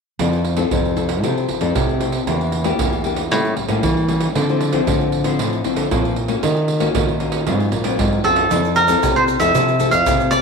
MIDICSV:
0, 0, Header, 1, 6, 480
1, 0, Start_track
1, 0, Key_signature, -1, "major"
1, 0, Tempo, 519031
1, 181, Time_signature, 4, 2, 24, 8
1, 9634, End_track
2, 0, Start_track
2, 0, Title_t, "Cavaquinho"
2, 0, Program_c, 0, 24
2, 7624, Note_on_c, 0, 69, 83
2, 8071, Note_off_c, 0, 69, 0
2, 8100, Note_on_c, 0, 70, 91
2, 8472, Note_on_c, 0, 72, 86
2, 8473, Note_off_c, 0, 70, 0
2, 8536, Note_off_c, 0, 72, 0
2, 8689, Note_on_c, 0, 76, 89
2, 9164, Note_off_c, 0, 76, 0
2, 9168, Note_on_c, 0, 77, 92
2, 9532, Note_on_c, 0, 74, 101
2, 9544, Note_off_c, 0, 77, 0
2, 9634, Note_off_c, 0, 74, 0
2, 9634, End_track
3, 0, Start_track
3, 0, Title_t, "Nylon-string guitar"
3, 0, Program_c, 1, 24
3, 182, Note_on_c, 1, 53, 53
3, 183, Note_on_c, 1, 60, 43
3, 186, Note_on_c, 1, 64, 49
3, 189, Note_on_c, 1, 69, 54
3, 407, Note_off_c, 1, 60, 0
3, 409, Note_off_c, 1, 64, 0
3, 411, Note_off_c, 1, 69, 0
3, 523, Note_on_c, 1, 60, 55
3, 527, Note_on_c, 1, 64, 57
3, 533, Note_on_c, 1, 69, 61
3, 639, Note_off_c, 1, 53, 0
3, 665, Note_on_c, 1, 48, 52
3, 855, Note_off_c, 1, 60, 0
3, 857, Note_off_c, 1, 64, 0
3, 859, Note_off_c, 1, 69, 0
3, 888, Note_on_c, 1, 60, 52
3, 894, Note_on_c, 1, 64, 45
3, 894, Note_on_c, 1, 69, 51
3, 1098, Note_off_c, 1, 60, 0
3, 1099, Note_off_c, 1, 64, 0
3, 1101, Note_off_c, 1, 69, 0
3, 1121, Note_off_c, 1, 48, 0
3, 1142, Note_on_c, 1, 53, 48
3, 1144, Note_on_c, 1, 60, 51
3, 1147, Note_on_c, 1, 64, 47
3, 1151, Note_on_c, 1, 69, 48
3, 1465, Note_off_c, 1, 60, 0
3, 1468, Note_off_c, 1, 64, 0
3, 1468, Note_off_c, 1, 69, 0
3, 1486, Note_on_c, 1, 60, 53
3, 1494, Note_on_c, 1, 64, 63
3, 1494, Note_on_c, 1, 69, 62
3, 1600, Note_off_c, 1, 53, 0
3, 1621, Note_on_c, 1, 48, 55
3, 1818, Note_off_c, 1, 60, 0
3, 1820, Note_off_c, 1, 64, 0
3, 1821, Note_off_c, 1, 69, 0
3, 1854, Note_on_c, 1, 60, 50
3, 1859, Note_on_c, 1, 64, 44
3, 1862, Note_on_c, 1, 69, 51
3, 2062, Note_off_c, 1, 60, 0
3, 2063, Note_off_c, 1, 64, 0
3, 2065, Note_off_c, 1, 69, 0
3, 2080, Note_off_c, 1, 48, 0
3, 2105, Note_on_c, 1, 52, 47
3, 2108, Note_on_c, 1, 58, 48
3, 2109, Note_on_c, 1, 62, 47
3, 2114, Note_on_c, 1, 67, 53
3, 2428, Note_off_c, 1, 58, 0
3, 2430, Note_off_c, 1, 62, 0
3, 2431, Note_off_c, 1, 67, 0
3, 2446, Note_on_c, 1, 58, 59
3, 2452, Note_on_c, 1, 62, 57
3, 2456, Note_on_c, 1, 67, 70
3, 2563, Note_off_c, 1, 52, 0
3, 2587, Note_on_c, 1, 52, 48
3, 2778, Note_off_c, 1, 58, 0
3, 2781, Note_off_c, 1, 62, 0
3, 2783, Note_off_c, 1, 67, 0
3, 2815, Note_on_c, 1, 58, 50
3, 2820, Note_on_c, 1, 62, 50
3, 2825, Note_on_c, 1, 67, 56
3, 2962, Note_off_c, 1, 58, 0
3, 2964, Note_off_c, 1, 62, 0
3, 2967, Note_off_c, 1, 67, 0
3, 3043, Note_off_c, 1, 52, 0
3, 3066, Note_on_c, 1, 45, 46
3, 3067, Note_on_c, 1, 55, 43
3, 3070, Note_on_c, 1, 58, 51
3, 3073, Note_on_c, 1, 61, 58
3, 3389, Note_off_c, 1, 55, 0
3, 3390, Note_off_c, 1, 58, 0
3, 3392, Note_off_c, 1, 61, 0
3, 3409, Note_on_c, 1, 55, 52
3, 3415, Note_on_c, 1, 58, 59
3, 3420, Note_on_c, 1, 61, 69
3, 3523, Note_off_c, 1, 45, 0
3, 3547, Note_on_c, 1, 52, 54
3, 3740, Note_off_c, 1, 55, 0
3, 3743, Note_off_c, 1, 58, 0
3, 3745, Note_off_c, 1, 61, 0
3, 3776, Note_on_c, 1, 55, 48
3, 3783, Note_on_c, 1, 58, 50
3, 3783, Note_on_c, 1, 61, 56
3, 3984, Note_off_c, 1, 55, 0
3, 3986, Note_off_c, 1, 58, 0
3, 3987, Note_off_c, 1, 61, 0
3, 4004, Note_off_c, 1, 52, 0
3, 4027, Note_on_c, 1, 50, 54
3, 4028, Note_on_c, 1, 53, 52
3, 4031, Note_on_c, 1, 60, 57
3, 4036, Note_on_c, 1, 64, 55
3, 4109, Note_off_c, 1, 53, 0
3, 4111, Note_off_c, 1, 60, 0
3, 4114, Note_off_c, 1, 64, 0
3, 4157, Note_on_c, 1, 53, 62
3, 4162, Note_on_c, 1, 60, 52
3, 4163, Note_on_c, 1, 64, 62
3, 4354, Note_off_c, 1, 53, 0
3, 4355, Note_off_c, 1, 60, 0
3, 4357, Note_off_c, 1, 64, 0
3, 4372, Note_on_c, 1, 53, 62
3, 4378, Note_on_c, 1, 60, 63
3, 4380, Note_on_c, 1, 64, 69
3, 4484, Note_off_c, 1, 50, 0
3, 4507, Note_on_c, 1, 45, 50
3, 4823, Note_off_c, 1, 53, 0
3, 4824, Note_off_c, 1, 60, 0
3, 4826, Note_off_c, 1, 64, 0
3, 4849, Note_on_c, 1, 53, 63
3, 4855, Note_on_c, 1, 60, 60
3, 4859, Note_on_c, 1, 64, 69
3, 4964, Note_off_c, 1, 45, 0
3, 4987, Note_on_c, 1, 50, 52
3, 5181, Note_off_c, 1, 53, 0
3, 5184, Note_off_c, 1, 60, 0
3, 5186, Note_off_c, 1, 64, 0
3, 5218, Note_on_c, 1, 53, 51
3, 5223, Note_on_c, 1, 60, 49
3, 5228, Note_on_c, 1, 64, 58
3, 5425, Note_off_c, 1, 53, 0
3, 5428, Note_off_c, 1, 60, 0
3, 5429, Note_off_c, 1, 64, 0
3, 5444, Note_off_c, 1, 50, 0
3, 5467, Note_on_c, 1, 53, 57
3, 5472, Note_on_c, 1, 60, 50
3, 5473, Note_on_c, 1, 64, 53
3, 5694, Note_off_c, 1, 53, 0
3, 5694, Note_off_c, 1, 60, 0
3, 5696, Note_off_c, 1, 64, 0
3, 5809, Note_on_c, 1, 58, 58
3, 5814, Note_on_c, 1, 61, 58
3, 5818, Note_on_c, 1, 66, 62
3, 5946, Note_on_c, 1, 51, 52
3, 6020, Note_off_c, 1, 58, 0
3, 6023, Note_off_c, 1, 61, 0
3, 6025, Note_off_c, 1, 66, 0
3, 6288, Note_on_c, 1, 58, 67
3, 6291, Note_on_c, 1, 61, 63
3, 6296, Note_on_c, 1, 66, 66
3, 6403, Note_off_c, 1, 51, 0
3, 6428, Note_on_c, 1, 46, 52
3, 6620, Note_off_c, 1, 58, 0
3, 6620, Note_off_c, 1, 61, 0
3, 6624, Note_off_c, 1, 66, 0
3, 6657, Note_on_c, 1, 58, 51
3, 6664, Note_on_c, 1, 61, 51
3, 6667, Note_on_c, 1, 66, 54
3, 6865, Note_off_c, 1, 58, 0
3, 6866, Note_off_c, 1, 61, 0
3, 6869, Note_off_c, 1, 66, 0
3, 6884, Note_off_c, 1, 46, 0
3, 6908, Note_on_c, 1, 44, 48
3, 6911, Note_on_c, 1, 54, 52
3, 6912, Note_on_c, 1, 60, 45
3, 6919, Note_on_c, 1, 65, 59
3, 7230, Note_off_c, 1, 54, 0
3, 7232, Note_off_c, 1, 60, 0
3, 7234, Note_off_c, 1, 65, 0
3, 7253, Note_on_c, 1, 54, 63
3, 7257, Note_on_c, 1, 60, 54
3, 7261, Note_on_c, 1, 65, 68
3, 7364, Note_off_c, 1, 44, 0
3, 7392, Note_on_c, 1, 51, 55
3, 7582, Note_off_c, 1, 54, 0
3, 7583, Note_off_c, 1, 60, 0
3, 7585, Note_off_c, 1, 65, 0
3, 7623, Note_on_c, 1, 54, 53
3, 7628, Note_on_c, 1, 60, 47
3, 7631, Note_on_c, 1, 65, 52
3, 7826, Note_off_c, 1, 54, 0
3, 7828, Note_off_c, 1, 60, 0
3, 7830, Note_off_c, 1, 65, 0
3, 7845, Note_off_c, 1, 51, 0
3, 7869, Note_on_c, 1, 53, 54
3, 7874, Note_on_c, 1, 60, 59
3, 7877, Note_on_c, 1, 69, 57
3, 7880, Note_on_c, 1, 64, 53
3, 8094, Note_off_c, 1, 60, 0
3, 8095, Note_off_c, 1, 64, 0
3, 8096, Note_off_c, 1, 69, 0
3, 8211, Note_on_c, 1, 60, 63
3, 8217, Note_on_c, 1, 64, 72
3, 8222, Note_on_c, 1, 69, 66
3, 8324, Note_off_c, 1, 53, 0
3, 8351, Note_on_c, 1, 48, 51
3, 8659, Note_off_c, 1, 60, 0
3, 8661, Note_off_c, 1, 64, 0
3, 8664, Note_off_c, 1, 69, 0
3, 8696, Note_on_c, 1, 60, 62
3, 8700, Note_on_c, 1, 64, 62
3, 8703, Note_on_c, 1, 69, 69
3, 8803, Note_off_c, 1, 48, 0
3, 8832, Note_on_c, 1, 53, 48
3, 9020, Note_off_c, 1, 60, 0
3, 9023, Note_off_c, 1, 64, 0
3, 9023, Note_off_c, 1, 69, 0
3, 9060, Note_on_c, 1, 60, 51
3, 9067, Note_on_c, 1, 64, 56
3, 9068, Note_on_c, 1, 69, 68
3, 9202, Note_off_c, 1, 60, 0
3, 9204, Note_off_c, 1, 64, 0
3, 9206, Note_off_c, 1, 69, 0
3, 9282, Note_off_c, 1, 53, 0
3, 9303, Note_on_c, 1, 48, 55
3, 9307, Note_on_c, 1, 60, 57
3, 9309, Note_on_c, 1, 64, 53
3, 9314, Note_on_c, 1, 69, 63
3, 9611, Note_off_c, 1, 60, 0
3, 9613, Note_off_c, 1, 64, 0
3, 9615, Note_off_c, 1, 69, 0
3, 9634, Note_off_c, 1, 48, 0
3, 9634, End_track
4, 0, Start_track
4, 0, Title_t, "Nylon-string guitar"
4, 0, Program_c, 2, 24
4, 182, Note_on_c, 2, 41, 80
4, 591, Note_off_c, 2, 41, 0
4, 663, Note_on_c, 2, 41, 86
4, 1143, Note_off_c, 2, 41, 0
4, 1143, Note_on_c, 2, 48, 74
4, 1348, Note_off_c, 2, 48, 0
4, 1486, Note_on_c, 2, 41, 75
4, 1596, Note_off_c, 2, 41, 0
4, 1626, Note_on_c, 2, 48, 84
4, 2034, Note_off_c, 2, 48, 0
4, 2103, Note_on_c, 2, 40, 88
4, 2513, Note_off_c, 2, 40, 0
4, 2583, Note_on_c, 2, 40, 80
4, 3064, Note_off_c, 2, 40, 0
4, 3064, Note_on_c, 2, 45, 74
4, 3270, Note_off_c, 2, 45, 0
4, 3408, Note_on_c, 2, 45, 75
4, 3518, Note_off_c, 2, 45, 0
4, 3544, Note_on_c, 2, 52, 85
4, 3954, Note_off_c, 2, 52, 0
4, 4028, Note_on_c, 2, 50, 89
4, 4436, Note_off_c, 2, 50, 0
4, 4511, Note_on_c, 2, 50, 80
4, 4988, Note_off_c, 2, 50, 0
4, 4988, Note_on_c, 2, 45, 82
4, 5192, Note_off_c, 2, 45, 0
4, 5333, Note_on_c, 2, 50, 84
4, 5442, Note_off_c, 2, 50, 0
4, 5467, Note_on_c, 2, 46, 76
4, 5876, Note_off_c, 2, 46, 0
4, 5950, Note_on_c, 2, 51, 91
4, 6357, Note_off_c, 2, 51, 0
4, 6427, Note_on_c, 2, 51, 77
4, 6907, Note_off_c, 2, 51, 0
4, 6910, Note_on_c, 2, 44, 80
4, 7113, Note_off_c, 2, 44, 0
4, 7142, Note_on_c, 2, 46, 78
4, 7360, Note_off_c, 2, 46, 0
4, 7390, Note_on_c, 2, 44, 81
4, 7605, Note_off_c, 2, 44, 0
4, 7620, Note_on_c, 2, 42, 78
4, 7839, Note_off_c, 2, 42, 0
4, 7865, Note_on_c, 2, 41, 99
4, 8272, Note_off_c, 2, 41, 0
4, 8348, Note_on_c, 2, 48, 82
4, 8652, Note_off_c, 2, 48, 0
4, 8691, Note_on_c, 2, 41, 81
4, 8798, Note_off_c, 2, 41, 0
4, 8829, Note_on_c, 2, 48, 81
4, 9170, Note_on_c, 2, 41, 90
4, 9185, Note_off_c, 2, 48, 0
4, 9277, Note_off_c, 2, 41, 0
4, 9308, Note_on_c, 2, 48, 85
4, 9610, Note_off_c, 2, 48, 0
4, 9634, End_track
5, 0, Start_track
5, 0, Title_t, "Pandeiro"
5, 178, Note_on_c, 9, 54, 80
5, 270, Note_off_c, 9, 54, 0
5, 306, Note_on_c, 9, 54, 30
5, 398, Note_off_c, 9, 54, 0
5, 411, Note_on_c, 9, 54, 45
5, 504, Note_off_c, 9, 54, 0
5, 523, Note_on_c, 9, 54, 60
5, 616, Note_off_c, 9, 54, 0
5, 659, Note_on_c, 9, 54, 67
5, 752, Note_off_c, 9, 54, 0
5, 789, Note_on_c, 9, 54, 26
5, 881, Note_off_c, 9, 54, 0
5, 894, Note_on_c, 9, 54, 47
5, 986, Note_off_c, 9, 54, 0
5, 1005, Note_on_c, 9, 54, 62
5, 1098, Note_off_c, 9, 54, 0
5, 1142, Note_on_c, 9, 54, 72
5, 1235, Note_off_c, 9, 54, 0
5, 1272, Note_on_c, 9, 54, 29
5, 1364, Note_off_c, 9, 54, 0
5, 1374, Note_on_c, 9, 54, 54
5, 1466, Note_off_c, 9, 54, 0
5, 1486, Note_on_c, 9, 54, 56
5, 1579, Note_off_c, 9, 54, 0
5, 1622, Note_on_c, 9, 54, 77
5, 1715, Note_off_c, 9, 54, 0
5, 1749, Note_on_c, 9, 54, 31
5, 1841, Note_off_c, 9, 54, 0
5, 1854, Note_on_c, 9, 54, 57
5, 1947, Note_off_c, 9, 54, 0
5, 1964, Note_on_c, 9, 54, 57
5, 2056, Note_off_c, 9, 54, 0
5, 2100, Note_on_c, 9, 54, 70
5, 2193, Note_off_c, 9, 54, 0
5, 2228, Note_on_c, 9, 54, 30
5, 2320, Note_off_c, 9, 54, 0
5, 2332, Note_on_c, 9, 54, 54
5, 2424, Note_off_c, 9, 54, 0
5, 2445, Note_on_c, 9, 54, 65
5, 2537, Note_off_c, 9, 54, 0
5, 2581, Note_on_c, 9, 54, 78
5, 2673, Note_off_c, 9, 54, 0
5, 2707, Note_on_c, 9, 54, 27
5, 2800, Note_off_c, 9, 54, 0
5, 2811, Note_on_c, 9, 54, 45
5, 2904, Note_off_c, 9, 54, 0
5, 2926, Note_on_c, 9, 54, 59
5, 3018, Note_off_c, 9, 54, 0
5, 3064, Note_on_c, 9, 54, 73
5, 3157, Note_off_c, 9, 54, 0
5, 3191, Note_on_c, 9, 54, 30
5, 3283, Note_off_c, 9, 54, 0
5, 3298, Note_on_c, 9, 54, 53
5, 3390, Note_off_c, 9, 54, 0
5, 3408, Note_on_c, 9, 54, 65
5, 3500, Note_off_c, 9, 54, 0
5, 3543, Note_on_c, 9, 54, 74
5, 3635, Note_off_c, 9, 54, 0
5, 3672, Note_on_c, 9, 54, 29
5, 3764, Note_off_c, 9, 54, 0
5, 3777, Note_on_c, 9, 54, 53
5, 3870, Note_off_c, 9, 54, 0
5, 3888, Note_on_c, 9, 54, 61
5, 3981, Note_off_c, 9, 54, 0
5, 4027, Note_on_c, 9, 54, 78
5, 4119, Note_off_c, 9, 54, 0
5, 4153, Note_on_c, 9, 54, 31
5, 4245, Note_off_c, 9, 54, 0
5, 4259, Note_on_c, 9, 54, 51
5, 4352, Note_off_c, 9, 54, 0
5, 4370, Note_on_c, 9, 54, 65
5, 4462, Note_off_c, 9, 54, 0
5, 4505, Note_on_c, 9, 54, 75
5, 4598, Note_off_c, 9, 54, 0
5, 4634, Note_on_c, 9, 54, 25
5, 4727, Note_off_c, 9, 54, 0
5, 4737, Note_on_c, 9, 54, 48
5, 4829, Note_off_c, 9, 54, 0
5, 4848, Note_on_c, 9, 54, 63
5, 4941, Note_off_c, 9, 54, 0
5, 4987, Note_on_c, 9, 54, 70
5, 5079, Note_off_c, 9, 54, 0
5, 5112, Note_on_c, 9, 54, 29
5, 5205, Note_off_c, 9, 54, 0
5, 5220, Note_on_c, 9, 54, 55
5, 5312, Note_off_c, 9, 54, 0
5, 5331, Note_on_c, 9, 54, 63
5, 5423, Note_off_c, 9, 54, 0
5, 5469, Note_on_c, 9, 54, 75
5, 5561, Note_off_c, 9, 54, 0
5, 5595, Note_on_c, 9, 54, 31
5, 5688, Note_off_c, 9, 54, 0
5, 5699, Note_on_c, 9, 54, 49
5, 5791, Note_off_c, 9, 54, 0
5, 5811, Note_on_c, 9, 54, 56
5, 5904, Note_off_c, 9, 54, 0
5, 5946, Note_on_c, 9, 54, 77
5, 6038, Note_off_c, 9, 54, 0
5, 6072, Note_on_c, 9, 54, 27
5, 6164, Note_off_c, 9, 54, 0
5, 6178, Note_on_c, 9, 54, 50
5, 6270, Note_off_c, 9, 54, 0
5, 6291, Note_on_c, 9, 54, 65
5, 6384, Note_off_c, 9, 54, 0
5, 6424, Note_on_c, 9, 54, 83
5, 6516, Note_off_c, 9, 54, 0
5, 6551, Note_on_c, 9, 54, 29
5, 6644, Note_off_c, 9, 54, 0
5, 6658, Note_on_c, 9, 54, 49
5, 6751, Note_off_c, 9, 54, 0
5, 6768, Note_on_c, 9, 54, 67
5, 6860, Note_off_c, 9, 54, 0
5, 6904, Note_on_c, 9, 54, 73
5, 6997, Note_off_c, 9, 54, 0
5, 7030, Note_on_c, 9, 54, 29
5, 7123, Note_off_c, 9, 54, 0
5, 7138, Note_on_c, 9, 54, 54
5, 7230, Note_off_c, 9, 54, 0
5, 7250, Note_on_c, 9, 54, 67
5, 7343, Note_off_c, 9, 54, 0
5, 7388, Note_on_c, 9, 54, 77
5, 7480, Note_off_c, 9, 54, 0
5, 7512, Note_on_c, 9, 54, 29
5, 7605, Note_off_c, 9, 54, 0
5, 7620, Note_on_c, 9, 54, 56
5, 7712, Note_off_c, 9, 54, 0
5, 7732, Note_on_c, 9, 54, 64
5, 7824, Note_off_c, 9, 54, 0
5, 7869, Note_on_c, 9, 54, 85
5, 7962, Note_off_c, 9, 54, 0
5, 7995, Note_on_c, 9, 54, 31
5, 8087, Note_off_c, 9, 54, 0
5, 8099, Note_on_c, 9, 54, 52
5, 8192, Note_off_c, 9, 54, 0
5, 8213, Note_on_c, 9, 54, 63
5, 8305, Note_off_c, 9, 54, 0
5, 8350, Note_on_c, 9, 54, 73
5, 8443, Note_off_c, 9, 54, 0
5, 8478, Note_on_c, 9, 54, 31
5, 8570, Note_off_c, 9, 54, 0
5, 8583, Note_on_c, 9, 54, 48
5, 8675, Note_off_c, 9, 54, 0
5, 8693, Note_on_c, 9, 54, 68
5, 8786, Note_off_c, 9, 54, 0
5, 8831, Note_on_c, 9, 54, 81
5, 8923, Note_off_c, 9, 54, 0
5, 8955, Note_on_c, 9, 54, 29
5, 9048, Note_off_c, 9, 54, 0
5, 9060, Note_on_c, 9, 54, 60
5, 9153, Note_off_c, 9, 54, 0
5, 9172, Note_on_c, 9, 54, 65
5, 9264, Note_off_c, 9, 54, 0
5, 9307, Note_on_c, 9, 54, 84
5, 9399, Note_off_c, 9, 54, 0
5, 9434, Note_on_c, 9, 54, 32
5, 9526, Note_off_c, 9, 54, 0
5, 9538, Note_on_c, 9, 54, 60
5, 9631, Note_off_c, 9, 54, 0
5, 9634, End_track
6, 0, Start_track
6, 0, Title_t, "Drums"
6, 178, Note_on_c, 9, 87, 56
6, 270, Note_off_c, 9, 87, 0
6, 523, Note_on_c, 9, 87, 30
6, 616, Note_off_c, 9, 87, 0
6, 659, Note_on_c, 9, 87, 98
6, 752, Note_off_c, 9, 87, 0
6, 1005, Note_on_c, 9, 87, 29
6, 1098, Note_off_c, 9, 87, 0
6, 1142, Note_on_c, 9, 87, 52
6, 1235, Note_off_c, 9, 87, 0
6, 1374, Note_on_c, 9, 87, 29
6, 1466, Note_off_c, 9, 87, 0
6, 1486, Note_on_c, 9, 87, 31
6, 1579, Note_off_c, 9, 87, 0
6, 1622, Note_on_c, 9, 87, 101
6, 1715, Note_off_c, 9, 87, 0
6, 1964, Note_on_c, 9, 87, 27
6, 2056, Note_off_c, 9, 87, 0
6, 2100, Note_on_c, 9, 87, 56
6, 2193, Note_off_c, 9, 87, 0
6, 2445, Note_on_c, 9, 87, 33
6, 2537, Note_off_c, 9, 87, 0
6, 2581, Note_on_c, 9, 87, 97
6, 2673, Note_off_c, 9, 87, 0
6, 2926, Note_on_c, 9, 87, 31
6, 3018, Note_off_c, 9, 87, 0
6, 3064, Note_on_c, 9, 87, 53
6, 3157, Note_off_c, 9, 87, 0
6, 3298, Note_on_c, 9, 87, 27
6, 3390, Note_off_c, 9, 87, 0
6, 3408, Note_on_c, 9, 87, 30
6, 3500, Note_off_c, 9, 87, 0
6, 3543, Note_on_c, 9, 87, 93
6, 3635, Note_off_c, 9, 87, 0
6, 3888, Note_on_c, 9, 87, 30
6, 3981, Note_off_c, 9, 87, 0
6, 4027, Note_on_c, 9, 87, 52
6, 4119, Note_off_c, 9, 87, 0
6, 4370, Note_on_c, 9, 87, 32
6, 4462, Note_off_c, 9, 87, 0
6, 4505, Note_on_c, 9, 87, 96
6, 4598, Note_off_c, 9, 87, 0
6, 4848, Note_on_c, 9, 87, 33
6, 4941, Note_off_c, 9, 87, 0
6, 4987, Note_on_c, 9, 87, 52
6, 5079, Note_off_c, 9, 87, 0
6, 5220, Note_on_c, 9, 87, 28
6, 5312, Note_off_c, 9, 87, 0
6, 5331, Note_on_c, 9, 87, 32
6, 5423, Note_off_c, 9, 87, 0
6, 5469, Note_on_c, 9, 87, 90
6, 5561, Note_off_c, 9, 87, 0
6, 5811, Note_on_c, 9, 87, 29
6, 5904, Note_off_c, 9, 87, 0
6, 5946, Note_on_c, 9, 87, 59
6, 6038, Note_off_c, 9, 87, 0
6, 6291, Note_on_c, 9, 87, 32
6, 6384, Note_off_c, 9, 87, 0
6, 6424, Note_on_c, 9, 87, 99
6, 6516, Note_off_c, 9, 87, 0
6, 6768, Note_on_c, 9, 87, 31
6, 6860, Note_off_c, 9, 87, 0
6, 6904, Note_on_c, 9, 87, 54
6, 6997, Note_off_c, 9, 87, 0
6, 7138, Note_on_c, 9, 87, 30
6, 7230, Note_off_c, 9, 87, 0
6, 7250, Note_on_c, 9, 87, 31
6, 7343, Note_off_c, 9, 87, 0
6, 7388, Note_on_c, 9, 87, 99
6, 7480, Note_off_c, 9, 87, 0
6, 7732, Note_on_c, 9, 87, 30
6, 7824, Note_off_c, 9, 87, 0
6, 7869, Note_on_c, 9, 82, 74
6, 7869, Note_on_c, 9, 87, 59
6, 7962, Note_off_c, 9, 82, 0
6, 7962, Note_off_c, 9, 87, 0
6, 7995, Note_on_c, 9, 82, 30
6, 8087, Note_off_c, 9, 82, 0
6, 8099, Note_on_c, 9, 82, 64
6, 8192, Note_off_c, 9, 82, 0
6, 8213, Note_on_c, 9, 82, 90
6, 8213, Note_on_c, 9, 87, 33
6, 8305, Note_off_c, 9, 82, 0
6, 8305, Note_off_c, 9, 87, 0
6, 8350, Note_on_c, 9, 82, 82
6, 8350, Note_on_c, 9, 87, 93
6, 8443, Note_off_c, 9, 82, 0
6, 8443, Note_off_c, 9, 87, 0
6, 8478, Note_on_c, 9, 82, 32
6, 8570, Note_off_c, 9, 82, 0
6, 8583, Note_on_c, 9, 82, 57
6, 8675, Note_off_c, 9, 82, 0
6, 8693, Note_on_c, 9, 82, 73
6, 8693, Note_on_c, 9, 87, 35
6, 8786, Note_off_c, 9, 82, 0
6, 8786, Note_off_c, 9, 87, 0
6, 8831, Note_on_c, 9, 82, 75
6, 8831, Note_on_c, 9, 87, 53
6, 8923, Note_off_c, 9, 82, 0
6, 8923, Note_off_c, 9, 87, 0
6, 8955, Note_on_c, 9, 82, 29
6, 9048, Note_off_c, 9, 82, 0
6, 9060, Note_on_c, 9, 82, 67
6, 9060, Note_on_c, 9, 87, 29
6, 9153, Note_off_c, 9, 82, 0
6, 9153, Note_off_c, 9, 87, 0
6, 9172, Note_on_c, 9, 82, 78
6, 9172, Note_on_c, 9, 87, 33
6, 9264, Note_off_c, 9, 82, 0
6, 9264, Note_off_c, 9, 87, 0
6, 9307, Note_on_c, 9, 82, 84
6, 9307, Note_on_c, 9, 87, 104
6, 9399, Note_off_c, 9, 82, 0
6, 9399, Note_off_c, 9, 87, 0
6, 9434, Note_on_c, 9, 82, 36
6, 9526, Note_off_c, 9, 82, 0
6, 9538, Note_on_c, 9, 82, 69
6, 9631, Note_off_c, 9, 82, 0
6, 9634, End_track
0, 0, End_of_file